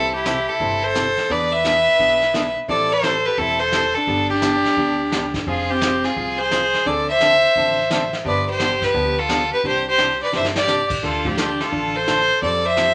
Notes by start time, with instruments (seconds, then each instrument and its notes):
Already playing: upright bass C2, hollow-body jazz guitar C3 E3 G3 C4 E4 A4, fiddle E4 A4
0.14 fiddle E4 G4
0.25 hollow-body jazz guitar C3 E3 G3 C4 E4 A4, snare, hi-hat pedal
0.49 fiddle E4 A4
0.60 upright bass G1, hollow-body jazz guitar C3 E3 G3 C4 E4 A4, brush sweep, kick
0.83 fiddle A4 C5
0.95 hollow-body jazz guitar C3 E3 G3 C4 E4 A4, snare, hi-hat pedal
1.17 snare
1.30 upright bass E2, hollow-body jazz guitar E3 B3 D4 G#4, fiddle B4 D5, brush sweep, kick
1.53 fiddle B4 E5
1.65 hollow-body jazz guitar E3 B3 D4 G#4, snare, hi-hat pedal
1.99 upright bass B1, hollow-body jazz guitar E3 B3 D4 G#4, brush sweep, kick
2.22 snare
2.34 hollow-body jazz guitar E3 B3 D4 G#4, snare, hi-hat pedal
2.68 upright bass A1, hollow-body jazz guitar E3 G3 C4 E4 A4, fiddle A4 D5, brush sweep, kick
2.92 fiddle A4 C5
3.03 hollow-body jazz guitar E3 G3 C4 E4 A4, snare, hi-hat pedal
3.26 fiddle G4 B4
3.38 upright bass E1, hollow-body jazz guitar E3 G3 C4 E4 A4, fiddle E4 A4, brush sweep, kick
3.59 fiddle A4 C5
3.72 hollow-body jazz guitar E3 G3 C4 E4 A4, snare, hi-hat pedal
3.95 fiddle D4 A4
4.07 upright bass G1, hollow-body jazz guitar D3 G3 B3 D4 G4, brush sweep, kick
4.29 fiddle D4 G4
4.42 hollow-body jazz guitar D3 G3 B3 D4 G4, snare, hi-hat pedal
4.65 snare
4.77 upright bass D2, hollow-body jazz guitar D3 G3 B3 D4 G4, brush sweep, kick
5.11 hollow-body jazz guitar D3 G3 B3 D4 G4, snare, hi-hat pedal
5.34 kick, snare
5.47 upright bass F1, hollow-body jazz guitar F3 C4 F4 G#4, fiddle F4 G#4, brush sweep, kick
5.70 fiddle C4 G4
5.81 hollow-body jazz guitar F3 C4 F4 G#4, snare, hi-hat pedal
6.04 fiddle F4 G#4, snare
6.16 upright bass C2, hollow-body jazz guitar F3 C4 F4 G#4, brush sweep, kick
6.38 fiddle G#4 C5
6.51 hollow-body jazz guitar F3 C4 F4 G#4, snare, hi-hat pedal
6.74 snare
6.85 upright bass D2, hollow-body jazz guitar D3 F3 C4 D4 A4, fiddle A4 D5, brush sweep, kick
7.09 fiddle C5 E5
7.21 hollow-body jazz guitar D3 F3 C4 D4 A4, snare, hi-hat pedal
7.56 upright bass A1, hollow-body jazz guitar D3 F3 C4 D4 A4, brush sweep, kick
7.90 hollow-body jazz guitar D3 F3 C4 D4 A4, snare, hi-hat pedal
8.13 snare
8.25 upright bass G1, hollow-body jazz guitar D3 F3 B3 D4 G4, fiddle B4 D5, brush sweep, kick
8.49 fiddle G4 C5
8.59 hollow-body jazz guitar D3 F3 B3 D4 G4, snare, hi-hat pedal
8.82 fiddle G4 B4, kick, snare
8.94 upright bass D2, hollow-body jazz guitar D3 F3 B3 D4 G4, brush sweep, kick
9.19 fiddle F4 A4
9.29 hollow-body jazz guitar D3 F3 B3 D4 G4, snare, hi-hat pedal
9.52 fiddle G4 B4
9.63 upright bass C2, hollow-body jazz guitar C3 E3 D4 G4, fiddle G4 C5, brush sweep, kick
9.88 fiddle G4 C5
9.98 hollow-body jazz guitar C3 E3 D4 G4, snare, hi-hat pedal
10.22 fiddle B4 D5
10.32 upright bass G1, hollow-body jazz guitar C3 E3 D4 G4, fiddle C5 E5, snare
10.44 snare
10.56 fiddle G4 D5, snare
10.68 hollow-body jazz guitar C3 E3 D4 G4, snare, hi-hat pedal
10.90 kick, crash
11.02 upright bass D2, hollow-body jazz guitar D3 A3 D4 F4 A4, fiddle F4 A4, brush sweep, kick
11.25 honky-tonk piano F3 A3 D4 F4, fiddle D4 G4, kick
11.37 hollow-body jazz guitar D3 A3 D4 F4 A4, snare, hi-hat pedal
11.60 fiddle F4 A4, snare
11.71 upright bass A1, hollow-body jazz guitar D3 A3 D4 F4 A4, brush sweep, kick
11.96 fiddle A4 C5
12.07 hollow-body jazz guitar D3 A3 D4 F4 A4, snare, hi-hat pedal
12.42 upright bass F2, hollow-body jazz guitar F3 G3 C4 F4 A4, fiddle A4 D5, brush sweep, kick
12.65 fiddle C5 E5
12.77 hollow-body jazz guitar F3 G3 C4 F4 A4, snare, hi-hat pedal